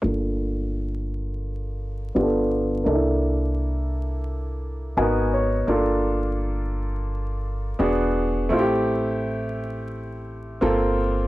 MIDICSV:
0, 0, Header, 1, 3, 480
1, 0, Start_track
1, 0, Tempo, 705882
1, 24, Time_signature, 4, 2, 24, 8
1, 7667, End_track
2, 0, Start_track
2, 0, Title_t, "Upright piano"
2, 0, Program_c, 0, 0
2, 12, Note_on_c, 0, 58, 66
2, 17, Note_on_c, 0, 62, 56
2, 27, Note_on_c, 0, 65, 58
2, 33, Note_on_c, 0, 69, 70
2, 1431, Note_off_c, 0, 58, 0
2, 1434, Note_off_c, 0, 62, 0
2, 1438, Note_off_c, 0, 65, 0
2, 1441, Note_off_c, 0, 69, 0
2, 1460, Note_on_c, 0, 59, 65
2, 1463, Note_on_c, 0, 62, 59
2, 1464, Note_on_c, 0, 65, 58
2, 1469, Note_on_c, 0, 67, 55
2, 1513, Note_on_c, 0, 69, 73
2, 1522, Note_off_c, 0, 67, 0
2, 1929, Note_off_c, 0, 62, 0
2, 1930, Note_on_c, 0, 58, 66
2, 1939, Note_on_c, 0, 62, 58
2, 1942, Note_off_c, 0, 59, 0
2, 1943, Note_off_c, 0, 69, 0
2, 1944, Note_off_c, 0, 65, 0
2, 1947, Note_on_c, 0, 63, 44
2, 1953, Note_on_c, 0, 69, 68
2, 1991, Note_on_c, 0, 64, 62
2, 2001, Note_off_c, 0, 63, 0
2, 3350, Note_off_c, 0, 58, 0
2, 3354, Note_off_c, 0, 62, 0
2, 3361, Note_off_c, 0, 69, 0
2, 3379, Note_on_c, 0, 59, 63
2, 3380, Note_off_c, 0, 64, 0
2, 3382, Note_on_c, 0, 63, 58
2, 3383, Note_on_c, 0, 80, 67
2, 3387, Note_on_c, 0, 66, 61
2, 3392, Note_on_c, 0, 70, 73
2, 3607, Note_off_c, 0, 80, 0
2, 3629, Note_on_c, 0, 73, 64
2, 3850, Note_off_c, 0, 73, 0
2, 3856, Note_on_c, 0, 58, 64
2, 3861, Note_off_c, 0, 59, 0
2, 3863, Note_off_c, 0, 63, 0
2, 3864, Note_on_c, 0, 62, 62
2, 3865, Note_off_c, 0, 66, 0
2, 3868, Note_off_c, 0, 70, 0
2, 3871, Note_on_c, 0, 65, 60
2, 3880, Note_on_c, 0, 69, 68
2, 5273, Note_off_c, 0, 58, 0
2, 5277, Note_off_c, 0, 62, 0
2, 5280, Note_off_c, 0, 65, 0
2, 5285, Note_off_c, 0, 69, 0
2, 5297, Note_on_c, 0, 59, 60
2, 5299, Note_on_c, 0, 62, 60
2, 5303, Note_on_c, 0, 66, 59
2, 5307, Note_on_c, 0, 68, 69
2, 5773, Note_on_c, 0, 57, 63
2, 5780, Note_off_c, 0, 59, 0
2, 5781, Note_off_c, 0, 62, 0
2, 5782, Note_on_c, 0, 60, 61
2, 5783, Note_off_c, 0, 66, 0
2, 5786, Note_off_c, 0, 68, 0
2, 5790, Note_on_c, 0, 64, 58
2, 5797, Note_on_c, 0, 65, 61
2, 5842, Note_on_c, 0, 67, 69
2, 5847, Note_off_c, 0, 65, 0
2, 7191, Note_off_c, 0, 57, 0
2, 7196, Note_off_c, 0, 60, 0
2, 7200, Note_off_c, 0, 64, 0
2, 7215, Note_on_c, 0, 58, 66
2, 7218, Note_on_c, 0, 60, 58
2, 7224, Note_on_c, 0, 65, 63
2, 7226, Note_off_c, 0, 67, 0
2, 7226, Note_on_c, 0, 69, 67
2, 7667, Note_off_c, 0, 58, 0
2, 7667, Note_off_c, 0, 60, 0
2, 7667, Note_off_c, 0, 65, 0
2, 7667, Note_off_c, 0, 69, 0
2, 7667, End_track
3, 0, Start_track
3, 0, Title_t, "Upright bass"
3, 0, Program_c, 1, 32
3, 26, Note_on_c, 1, 31, 63
3, 1438, Note_off_c, 1, 31, 0
3, 1469, Note_on_c, 1, 31, 69
3, 1923, Note_off_c, 1, 31, 0
3, 1947, Note_on_c, 1, 36, 63
3, 3358, Note_off_c, 1, 36, 0
3, 3382, Note_on_c, 1, 32, 71
3, 3839, Note_off_c, 1, 32, 0
3, 3860, Note_on_c, 1, 31, 68
3, 5275, Note_off_c, 1, 31, 0
3, 5301, Note_on_c, 1, 28, 66
3, 5758, Note_off_c, 1, 28, 0
3, 5780, Note_on_c, 1, 33, 68
3, 7195, Note_off_c, 1, 33, 0
3, 7222, Note_on_c, 1, 31, 75
3, 7667, Note_off_c, 1, 31, 0
3, 7667, End_track
0, 0, End_of_file